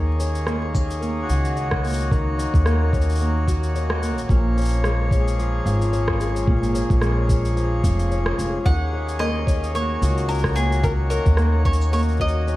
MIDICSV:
0, 0, Header, 1, 6, 480
1, 0, Start_track
1, 0, Tempo, 545455
1, 1857, Time_signature, 4, 2, 24, 8
1, 11056, End_track
2, 0, Start_track
2, 0, Title_t, "Mandolin"
2, 0, Program_c, 0, 25
2, 7618, Note_on_c, 0, 78, 99
2, 8089, Note_on_c, 0, 75, 94
2, 8112, Note_off_c, 0, 78, 0
2, 8539, Note_off_c, 0, 75, 0
2, 8580, Note_on_c, 0, 73, 86
2, 9048, Note_off_c, 0, 73, 0
2, 9051, Note_on_c, 0, 70, 85
2, 9289, Note_on_c, 0, 68, 84
2, 9301, Note_off_c, 0, 70, 0
2, 9537, Note_on_c, 0, 70, 82
2, 9540, Note_off_c, 0, 68, 0
2, 9601, Note_off_c, 0, 70, 0
2, 9768, Note_on_c, 0, 70, 81
2, 10219, Note_off_c, 0, 70, 0
2, 10255, Note_on_c, 0, 73, 79
2, 10479, Note_off_c, 0, 73, 0
2, 10498, Note_on_c, 0, 73, 86
2, 10563, Note_off_c, 0, 73, 0
2, 10742, Note_on_c, 0, 75, 80
2, 11056, Note_off_c, 0, 75, 0
2, 11056, End_track
3, 0, Start_track
3, 0, Title_t, "Accordion"
3, 0, Program_c, 1, 21
3, 0, Note_on_c, 1, 51, 72
3, 0, Note_on_c, 1, 58, 63
3, 0, Note_on_c, 1, 68, 70
3, 0, Note_on_c, 1, 73, 74
3, 1079, Note_on_c, 1, 66, 80
3, 1481, Note_off_c, 1, 68, 0
3, 3773, Note_off_c, 1, 51, 0
3, 3774, Note_on_c, 1, 53, 83
3, 3779, Note_off_c, 1, 66, 0
3, 4569, Note_on_c, 1, 68, 76
3, 7615, Note_off_c, 1, 53, 0
3, 7616, Note_on_c, 1, 51, 81
3, 8626, Note_on_c, 1, 66, 76
3, 9160, Note_off_c, 1, 68, 0
3, 11056, Note_off_c, 1, 51, 0
3, 11056, Note_off_c, 1, 58, 0
3, 11056, Note_off_c, 1, 66, 0
3, 11056, Note_off_c, 1, 73, 0
3, 11056, End_track
4, 0, Start_track
4, 0, Title_t, "Twelve-string acoustic guitar"
4, 0, Program_c, 2, 25
4, 0, Note_on_c, 2, 51, 78
4, 174, Note_on_c, 2, 61, 55
4, 414, Note_on_c, 2, 58, 63
4, 648, Note_off_c, 2, 61, 0
4, 652, Note_on_c, 2, 61, 53
4, 891, Note_off_c, 2, 58, 0
4, 894, Note_on_c, 2, 58, 67
4, 1135, Note_on_c, 2, 66, 57
4, 1376, Note_off_c, 2, 61, 0
4, 1379, Note_on_c, 2, 61, 58
4, 1618, Note_off_c, 2, 58, 0
4, 1622, Note_on_c, 2, 58, 49
4, 1852, Note_off_c, 2, 51, 0
4, 1862, Note_on_c, 2, 51, 81
4, 2093, Note_off_c, 2, 61, 0
4, 2097, Note_on_c, 2, 61, 56
4, 2334, Note_off_c, 2, 58, 0
4, 2337, Note_on_c, 2, 58, 64
4, 2575, Note_off_c, 2, 61, 0
4, 2578, Note_on_c, 2, 61, 58
4, 2818, Note_off_c, 2, 58, 0
4, 2822, Note_on_c, 2, 58, 68
4, 3048, Note_off_c, 2, 66, 0
4, 3058, Note_on_c, 2, 66, 59
4, 3295, Note_off_c, 2, 61, 0
4, 3299, Note_on_c, 2, 61, 62
4, 3535, Note_off_c, 2, 58, 0
4, 3539, Note_on_c, 2, 58, 57
4, 3777, Note_on_c, 2, 46, 80
4, 3779, Note_off_c, 2, 51, 0
4, 3831, Note_off_c, 2, 66, 0
4, 4020, Note_off_c, 2, 61, 0
4, 4023, Note_on_c, 2, 61, 52
4, 4261, Note_off_c, 2, 58, 0
4, 4264, Note_on_c, 2, 56, 63
4, 4500, Note_off_c, 2, 61, 0
4, 4504, Note_on_c, 2, 61, 59
4, 4741, Note_on_c, 2, 53, 71
4, 4978, Note_on_c, 2, 65, 62
4, 5215, Note_off_c, 2, 61, 0
4, 5218, Note_on_c, 2, 61, 62
4, 5449, Note_off_c, 2, 56, 0
4, 5460, Note_on_c, 2, 56, 53
4, 5687, Note_off_c, 2, 46, 0
4, 5697, Note_on_c, 2, 46, 82
4, 5931, Note_off_c, 2, 61, 0
4, 5935, Note_on_c, 2, 61, 56
4, 6167, Note_off_c, 2, 56, 0
4, 6177, Note_on_c, 2, 56, 64
4, 6411, Note_off_c, 2, 61, 0
4, 6415, Note_on_c, 2, 61, 57
4, 6643, Note_off_c, 2, 53, 0
4, 6654, Note_on_c, 2, 53, 65
4, 6887, Note_off_c, 2, 65, 0
4, 6898, Note_on_c, 2, 65, 61
4, 7133, Note_off_c, 2, 61, 0
4, 7136, Note_on_c, 2, 61, 58
4, 7371, Note_off_c, 2, 56, 0
4, 7382, Note_on_c, 2, 56, 51
4, 7615, Note_off_c, 2, 53, 0
4, 7617, Note_off_c, 2, 46, 0
4, 7619, Note_on_c, 2, 51, 74
4, 7671, Note_off_c, 2, 65, 0
4, 7673, Note_off_c, 2, 56, 0
4, 7857, Note_off_c, 2, 61, 0
4, 7860, Note_on_c, 2, 61, 56
4, 8095, Note_on_c, 2, 58, 64
4, 8331, Note_off_c, 2, 61, 0
4, 8334, Note_on_c, 2, 61, 62
4, 8574, Note_off_c, 2, 58, 0
4, 8578, Note_on_c, 2, 58, 69
4, 8817, Note_on_c, 2, 66, 61
4, 9050, Note_off_c, 2, 61, 0
4, 9053, Note_on_c, 2, 61, 61
4, 9288, Note_off_c, 2, 58, 0
4, 9291, Note_on_c, 2, 58, 53
4, 9518, Note_off_c, 2, 51, 0
4, 9529, Note_on_c, 2, 51, 82
4, 9768, Note_off_c, 2, 61, 0
4, 9772, Note_on_c, 2, 61, 57
4, 10008, Note_off_c, 2, 58, 0
4, 10012, Note_on_c, 2, 58, 67
4, 10248, Note_off_c, 2, 61, 0
4, 10252, Note_on_c, 2, 61, 59
4, 10493, Note_off_c, 2, 58, 0
4, 10496, Note_on_c, 2, 58, 71
4, 10722, Note_off_c, 2, 66, 0
4, 10733, Note_on_c, 2, 66, 62
4, 10971, Note_off_c, 2, 61, 0
4, 10975, Note_on_c, 2, 61, 63
4, 11056, Note_off_c, 2, 51, 0
4, 11056, Note_off_c, 2, 58, 0
4, 11056, Note_off_c, 2, 61, 0
4, 11056, Note_off_c, 2, 66, 0
4, 11056, End_track
5, 0, Start_track
5, 0, Title_t, "Upright bass"
5, 0, Program_c, 3, 32
5, 0, Note_on_c, 3, 39, 83
5, 1075, Note_off_c, 3, 39, 0
5, 1137, Note_on_c, 3, 37, 81
5, 2155, Note_off_c, 3, 37, 0
5, 2233, Note_on_c, 3, 39, 83
5, 3671, Note_off_c, 3, 39, 0
5, 3671, Note_on_c, 3, 34, 87
5, 3739, Note_off_c, 3, 34, 0
5, 3779, Note_on_c, 3, 34, 78
5, 4918, Note_off_c, 3, 34, 0
5, 4978, Note_on_c, 3, 32, 92
5, 5995, Note_off_c, 3, 32, 0
5, 6073, Note_on_c, 3, 34, 86
5, 6892, Note_off_c, 3, 34, 0
5, 6897, Note_on_c, 3, 29, 93
5, 7317, Note_off_c, 3, 29, 0
5, 7375, Note_on_c, 3, 29, 88
5, 7541, Note_off_c, 3, 29, 0
5, 7617, Note_on_c, 3, 39, 85
5, 8757, Note_off_c, 3, 39, 0
5, 8815, Note_on_c, 3, 37, 92
5, 9834, Note_off_c, 3, 37, 0
5, 9907, Note_on_c, 3, 39, 90
5, 11056, Note_off_c, 3, 39, 0
5, 11056, End_track
6, 0, Start_track
6, 0, Title_t, "Drums"
6, 177, Note_on_c, 9, 82, 70
6, 265, Note_off_c, 9, 82, 0
6, 309, Note_on_c, 9, 82, 41
6, 397, Note_off_c, 9, 82, 0
6, 411, Note_on_c, 9, 37, 72
6, 419, Note_on_c, 9, 82, 28
6, 499, Note_off_c, 9, 37, 0
6, 507, Note_off_c, 9, 82, 0
6, 657, Note_on_c, 9, 36, 90
6, 660, Note_on_c, 9, 82, 70
6, 745, Note_off_c, 9, 36, 0
6, 748, Note_off_c, 9, 82, 0
6, 797, Note_on_c, 9, 82, 41
6, 885, Note_off_c, 9, 82, 0
6, 902, Note_on_c, 9, 82, 31
6, 990, Note_off_c, 9, 82, 0
6, 1140, Note_on_c, 9, 82, 74
6, 1228, Note_off_c, 9, 82, 0
6, 1274, Note_on_c, 9, 82, 42
6, 1362, Note_off_c, 9, 82, 0
6, 1379, Note_on_c, 9, 82, 29
6, 1467, Note_off_c, 9, 82, 0
6, 1507, Note_on_c, 9, 37, 73
6, 1514, Note_on_c, 9, 36, 55
6, 1595, Note_off_c, 9, 37, 0
6, 1602, Note_off_c, 9, 36, 0
6, 1623, Note_on_c, 9, 82, 30
6, 1646, Note_off_c, 9, 82, 0
6, 1646, Note_on_c, 9, 82, 39
6, 1669, Note_off_c, 9, 82, 0
6, 1669, Note_on_c, 9, 82, 43
6, 1694, Note_off_c, 9, 82, 0
6, 1694, Note_on_c, 9, 82, 49
6, 1705, Note_off_c, 9, 82, 0
6, 1705, Note_on_c, 9, 82, 60
6, 1738, Note_off_c, 9, 82, 0
6, 1738, Note_on_c, 9, 82, 60
6, 1763, Note_off_c, 9, 82, 0
6, 1763, Note_on_c, 9, 82, 39
6, 1851, Note_off_c, 9, 82, 0
6, 1861, Note_on_c, 9, 36, 115
6, 1866, Note_on_c, 9, 82, 33
6, 1949, Note_off_c, 9, 36, 0
6, 1954, Note_off_c, 9, 82, 0
6, 2108, Note_on_c, 9, 82, 70
6, 2196, Note_off_c, 9, 82, 0
6, 2234, Note_on_c, 9, 36, 92
6, 2243, Note_on_c, 9, 82, 40
6, 2322, Note_off_c, 9, 36, 0
6, 2331, Note_off_c, 9, 82, 0
6, 2339, Note_on_c, 9, 37, 77
6, 2347, Note_on_c, 9, 82, 31
6, 2427, Note_off_c, 9, 37, 0
6, 2435, Note_off_c, 9, 82, 0
6, 2579, Note_on_c, 9, 36, 97
6, 2587, Note_on_c, 9, 82, 33
6, 2653, Note_off_c, 9, 82, 0
6, 2653, Note_on_c, 9, 82, 38
6, 2667, Note_off_c, 9, 36, 0
6, 2724, Note_off_c, 9, 82, 0
6, 2724, Note_on_c, 9, 82, 49
6, 2739, Note_off_c, 9, 82, 0
6, 2739, Note_on_c, 9, 82, 22
6, 2746, Note_off_c, 9, 82, 0
6, 2746, Note_on_c, 9, 82, 26
6, 2775, Note_off_c, 9, 82, 0
6, 2775, Note_on_c, 9, 82, 56
6, 2794, Note_off_c, 9, 82, 0
6, 2794, Note_on_c, 9, 82, 33
6, 2812, Note_off_c, 9, 82, 0
6, 2812, Note_on_c, 9, 82, 36
6, 2827, Note_off_c, 9, 82, 0
6, 2827, Note_on_c, 9, 82, 32
6, 2915, Note_off_c, 9, 82, 0
6, 3059, Note_on_c, 9, 36, 55
6, 3065, Note_on_c, 9, 82, 79
6, 3147, Note_off_c, 9, 36, 0
6, 3153, Note_off_c, 9, 82, 0
6, 3198, Note_on_c, 9, 82, 40
6, 3286, Note_off_c, 9, 82, 0
6, 3306, Note_on_c, 9, 82, 33
6, 3394, Note_off_c, 9, 82, 0
6, 3431, Note_on_c, 9, 37, 76
6, 3519, Note_off_c, 9, 37, 0
6, 3545, Note_on_c, 9, 82, 77
6, 3633, Note_off_c, 9, 82, 0
6, 3680, Note_on_c, 9, 82, 41
6, 3768, Note_off_c, 9, 82, 0
6, 3778, Note_on_c, 9, 36, 117
6, 3786, Note_on_c, 9, 82, 33
6, 3866, Note_off_c, 9, 36, 0
6, 3874, Note_off_c, 9, 82, 0
6, 4029, Note_on_c, 9, 82, 33
6, 4062, Note_off_c, 9, 82, 0
6, 4062, Note_on_c, 9, 82, 44
6, 4094, Note_off_c, 9, 82, 0
6, 4094, Note_on_c, 9, 82, 53
6, 4127, Note_off_c, 9, 82, 0
6, 4127, Note_on_c, 9, 82, 62
6, 4161, Note_off_c, 9, 82, 0
6, 4161, Note_on_c, 9, 82, 37
6, 4249, Note_off_c, 9, 82, 0
6, 4259, Note_on_c, 9, 37, 68
6, 4267, Note_on_c, 9, 82, 33
6, 4347, Note_off_c, 9, 37, 0
6, 4355, Note_off_c, 9, 82, 0
6, 4498, Note_on_c, 9, 36, 102
6, 4507, Note_on_c, 9, 82, 72
6, 4586, Note_off_c, 9, 36, 0
6, 4595, Note_off_c, 9, 82, 0
6, 4645, Note_on_c, 9, 82, 44
6, 4733, Note_off_c, 9, 82, 0
6, 4748, Note_on_c, 9, 82, 34
6, 4836, Note_off_c, 9, 82, 0
6, 4986, Note_on_c, 9, 82, 74
6, 5074, Note_off_c, 9, 82, 0
6, 5119, Note_on_c, 9, 82, 42
6, 5207, Note_off_c, 9, 82, 0
6, 5221, Note_on_c, 9, 82, 32
6, 5309, Note_off_c, 9, 82, 0
6, 5348, Note_on_c, 9, 37, 78
6, 5352, Note_on_c, 9, 36, 58
6, 5436, Note_off_c, 9, 37, 0
6, 5440, Note_off_c, 9, 36, 0
6, 5461, Note_on_c, 9, 82, 81
6, 5549, Note_off_c, 9, 82, 0
6, 5599, Note_on_c, 9, 82, 45
6, 5687, Note_off_c, 9, 82, 0
6, 5697, Note_on_c, 9, 36, 112
6, 5785, Note_off_c, 9, 36, 0
6, 5838, Note_on_c, 9, 82, 32
6, 5926, Note_off_c, 9, 82, 0
6, 5942, Note_on_c, 9, 82, 75
6, 6030, Note_off_c, 9, 82, 0
6, 6072, Note_on_c, 9, 36, 96
6, 6077, Note_on_c, 9, 82, 37
6, 6160, Note_off_c, 9, 36, 0
6, 6165, Note_off_c, 9, 82, 0
6, 6173, Note_on_c, 9, 37, 69
6, 6181, Note_on_c, 9, 82, 31
6, 6261, Note_off_c, 9, 37, 0
6, 6269, Note_off_c, 9, 82, 0
6, 6418, Note_on_c, 9, 36, 102
6, 6420, Note_on_c, 9, 82, 71
6, 6506, Note_off_c, 9, 36, 0
6, 6508, Note_off_c, 9, 82, 0
6, 6558, Note_on_c, 9, 82, 41
6, 6646, Note_off_c, 9, 82, 0
6, 6663, Note_on_c, 9, 82, 32
6, 6751, Note_off_c, 9, 82, 0
6, 6898, Note_on_c, 9, 36, 57
6, 6902, Note_on_c, 9, 82, 78
6, 6986, Note_off_c, 9, 36, 0
6, 6990, Note_off_c, 9, 82, 0
6, 7036, Note_on_c, 9, 82, 43
6, 7124, Note_off_c, 9, 82, 0
6, 7142, Note_on_c, 9, 82, 30
6, 7230, Note_off_c, 9, 82, 0
6, 7268, Note_on_c, 9, 37, 75
6, 7356, Note_off_c, 9, 37, 0
6, 7385, Note_on_c, 9, 82, 77
6, 7473, Note_off_c, 9, 82, 0
6, 7617, Note_on_c, 9, 36, 110
6, 7624, Note_on_c, 9, 82, 33
6, 7705, Note_off_c, 9, 36, 0
6, 7712, Note_off_c, 9, 82, 0
6, 7996, Note_on_c, 9, 82, 66
6, 8084, Note_off_c, 9, 82, 0
6, 8096, Note_on_c, 9, 37, 68
6, 8104, Note_on_c, 9, 82, 31
6, 8184, Note_off_c, 9, 37, 0
6, 8192, Note_off_c, 9, 82, 0
6, 8335, Note_on_c, 9, 36, 93
6, 8345, Note_on_c, 9, 82, 69
6, 8423, Note_off_c, 9, 36, 0
6, 8433, Note_off_c, 9, 82, 0
6, 8481, Note_on_c, 9, 82, 41
6, 8569, Note_off_c, 9, 82, 0
6, 8584, Note_on_c, 9, 82, 32
6, 8672, Note_off_c, 9, 82, 0
6, 8824, Note_on_c, 9, 82, 74
6, 8912, Note_off_c, 9, 82, 0
6, 8957, Note_on_c, 9, 82, 44
6, 9045, Note_off_c, 9, 82, 0
6, 9063, Note_on_c, 9, 82, 29
6, 9104, Note_off_c, 9, 82, 0
6, 9104, Note_on_c, 9, 82, 25
6, 9139, Note_off_c, 9, 82, 0
6, 9139, Note_on_c, 9, 82, 21
6, 9187, Note_on_c, 9, 37, 74
6, 9189, Note_on_c, 9, 36, 56
6, 9220, Note_off_c, 9, 82, 0
6, 9220, Note_on_c, 9, 82, 14
6, 9265, Note_off_c, 9, 82, 0
6, 9265, Note_on_c, 9, 82, 11
6, 9275, Note_off_c, 9, 37, 0
6, 9277, Note_off_c, 9, 36, 0
6, 9299, Note_off_c, 9, 82, 0
6, 9299, Note_on_c, 9, 82, 72
6, 9387, Note_off_c, 9, 82, 0
6, 9436, Note_on_c, 9, 82, 43
6, 9524, Note_off_c, 9, 82, 0
6, 9535, Note_on_c, 9, 36, 100
6, 9537, Note_on_c, 9, 82, 31
6, 9623, Note_off_c, 9, 36, 0
6, 9625, Note_off_c, 9, 82, 0
6, 9777, Note_on_c, 9, 82, 67
6, 9865, Note_off_c, 9, 82, 0
6, 9909, Note_on_c, 9, 36, 90
6, 9910, Note_on_c, 9, 82, 38
6, 9997, Note_off_c, 9, 36, 0
6, 9998, Note_off_c, 9, 82, 0
6, 10006, Note_on_c, 9, 37, 70
6, 10015, Note_on_c, 9, 82, 29
6, 10094, Note_off_c, 9, 37, 0
6, 10103, Note_off_c, 9, 82, 0
6, 10254, Note_on_c, 9, 36, 93
6, 10324, Note_on_c, 9, 82, 67
6, 10342, Note_off_c, 9, 36, 0
6, 10395, Note_off_c, 9, 82, 0
6, 10395, Note_on_c, 9, 82, 37
6, 10483, Note_off_c, 9, 82, 0
6, 10501, Note_on_c, 9, 82, 31
6, 10544, Note_off_c, 9, 82, 0
6, 10544, Note_on_c, 9, 82, 23
6, 10581, Note_off_c, 9, 82, 0
6, 10581, Note_on_c, 9, 82, 20
6, 10635, Note_off_c, 9, 82, 0
6, 10635, Note_on_c, 9, 82, 16
6, 10662, Note_off_c, 9, 82, 0
6, 10662, Note_on_c, 9, 82, 12
6, 10707, Note_off_c, 9, 82, 0
6, 10707, Note_on_c, 9, 82, 10
6, 10734, Note_on_c, 9, 36, 52
6, 10795, Note_off_c, 9, 82, 0
6, 10809, Note_on_c, 9, 82, 42
6, 10822, Note_off_c, 9, 36, 0
6, 10897, Note_off_c, 9, 82, 0
6, 10982, Note_on_c, 9, 82, 29
6, 11056, Note_off_c, 9, 82, 0
6, 11056, End_track
0, 0, End_of_file